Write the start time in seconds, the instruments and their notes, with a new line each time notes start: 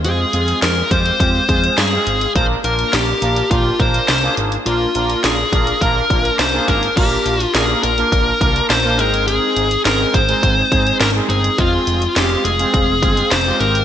0.05 analog synth bass F2, analog polysynth G#3 C4 F4 G#4, lead electric guitar G#4, closed hi-hat
0.33 analog synth bass F2, analog polysynth G#3 C4 F4 G#4, closed hi-hat
0.48 closed hi-hat
0.62 analog synth bass F2, lead electric guitar A#4, snare, closed hi-hat
0.91 analog synth bass F2, analog polysynth G#3 C4 F4 G4, lead electric guitar C5, kick, closed hi-hat
1.06 closed hi-hat
1.20 analog synth bass F2, analog polysynth G#3 C4 F4 G4, lead electric guitar C5, kick, closed hi-hat
1.49 analog synth bass F2, analog polysynth G#3 C4 F4 G#4, kick, closed hi-hat
1.64 closed hi-hat
1.78 analog synth bass G2, lead electric guitar G#4, snare, closed hi-hat
1.92 analog polysynth G#3 C4 F4 G#4
2.07 analog synth bass G#1, closed hi-hat
2.21 closed hi-hat
2.36 analog synth bass A#1, analog polysynth A#3 D4 F4 A#4, lead electric guitar C5, kick, closed hi-hat
2.64 analog synth bass A#1, analog polysynth A#3 D4 F4 A#4, lead electric guitar A#4, closed hi-hat
2.79 closed hi-hat
2.93 analog synth bass A#1, lead electric guitar G4, snare, closed hi-hat
3.22 analog synth bass A#1, analog polysynth A#3 D4 F4 A#4, closed hi-hat
3.36 closed hi-hat
3.51 analog synth bass A#1, analog polysynth A#3 D4 F4 G4, lead electric guitar F4, kick, closed hi-hat
3.79 analog synth bass A#1, analog polysynth A#3 D4 F4 A#4, lead electric guitar C5, kick, closed hi-hat
3.94 closed hi-hat
4.08 analog synth bass C2, snare, closed hi-hat
4.23 analog polysynth A#3 D4 F4 G#4
4.37 analog synth bass G#1, closed hi-hat
4.52 closed hi-hat
4.66 analog synth bass A#1, analog polysynth A#3 D4 F4 A#4, lead electric guitar F4, closed hi-hat
4.95 analog synth bass A#1, analog polysynth A#3 D4 F4 A#4, closed hi-hat
5.10 closed hi-hat
5.24 analog synth bass A#1, lead electric guitar G#4, snare, closed hi-hat
5.52 analog synth bass A#1, analog polysynth A#3 D4 F4 A#4, kick, closed hi-hat
5.67 closed hi-hat
5.81 analog synth bass A#1, analog polysynth A#3 D4 F4 A#4, lead electric guitar A#4, kick, closed hi-hat
6.10 analog synth bass A#1, analog polysynth A#3 D4 F4 A#4, kick, closed hi-hat
6.25 closed hi-hat
6.39 analog synth bass C2, lead electric guitar C5, snare, closed hi-hat
6.53 analog polysynth A#3 D4 F4 G#4
6.68 analog synth bass G#1, lead electric guitar A#4, kick, closed hi-hat
6.83 closed hi-hat
6.97 analog synth bass A#1, analog polysynth A#3 D4 F4 A#4, lead electric guitar G4, kick, closed hi-hat, crash
7.26 analog synth bass A#1, closed hi-hat
7.40 lead electric guitar F4, closed hi-hat
7.54 analog synth bass A#1, analog polysynth A#3 D4 F4 A#4, lead electric guitar G#4, snare, closed hi-hat
7.83 analog synth bass A#1, lead electric guitar A#4, closed hi-hat
7.98 analog polysynth A#3 D4 F4 A#4, closed hi-hat
8.12 analog synth bass A#1, kick, closed hi-hat
8.41 analog synth bass C2, analog polysynth A#3 D4 F4 A#4, kick, closed hi-hat
8.56 closed hi-hat
8.70 analog synth bass A#1, lead electric guitar C5, snare, closed hi-hat
8.85 analog polysynth A#3 D4 F4 A#4
8.99 analog synth bass G#1, analog polysynth G#3 C4 D#4 G#4, lead electric guitar A#4, closed hi-hat
9.14 closed hi-hat
9.27 lead electric guitar G#4, closed hi-hat
9.56 analog synth bass G#1, closed hi-hat
9.71 closed hi-hat
9.85 analog synth bass G#1, analog polysynth G#3 C4 D#4 G#4, lead electric guitar A#4, snare, closed hi-hat
10.14 analog synth bass G#1, lead electric guitar C5, kick, closed hi-hat
10.29 analog polysynth G#3 C4 D#4 G#4, closed hi-hat
10.43 analog synth bass G#1, kick, closed hi-hat
10.72 analog synth bass G#1, analog polysynth G#3 C4 D#4 G#4, kick, closed hi-hat
10.87 closed hi-hat
11.01 analog synth bass G#1, lead electric guitar A#4, snare, closed hi-hat
11.15 analog polysynth G#3 C4 D#4 G#4
11.30 analog synth bass G1, lead electric guitar G#4, closed hi-hat
11.44 closed hi-hat
11.58 analog synth bass F1, analog polysynth G#3 C4 F4 G#4, lead electric guitar F4, kick, closed hi-hat
11.87 analog synth bass F1, closed hi-hat
12.02 closed hi-hat
12.16 analog synth bass F1, analog polysynth G#3 C4 F4 G#4, lead electric guitar G4, snare, closed hi-hat
12.45 analog synth bass F1, lead electric guitar G#4, closed hi-hat
12.59 analog polysynth G#3 C4 F4 G#4, closed hi-hat
12.74 analog synth bass F1, kick, closed hi-hat
13.03 analog synth bass G1, analog polysynth G#3 C4 F4 G#4, kick, closed hi-hat
13.17 closed hi-hat
13.31 analog synth bass F1, lead electric guitar C5, snare, closed hi-hat
13.46 analog polysynth G#3 C4 F4 G4
13.60 analog synth bass G#1, lead electric guitar A#4, closed hi-hat
13.75 closed hi-hat